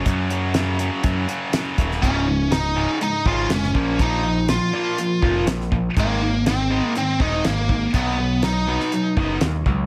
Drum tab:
HH |x-x-x-x-x-x-x-x-|x---x---x---x---|x---x---x---x---|x---x---x---x---|
SD |----o-------o--o|----o-------oo--|----o-------oo--|----o-------o---|
BD |o-------o-----o-|o---------o---o-|o---------o---o-|o---------o---o-|

HH |x---x---x---x---|
SD |----o--o----o---|
BD |o---------o---o-|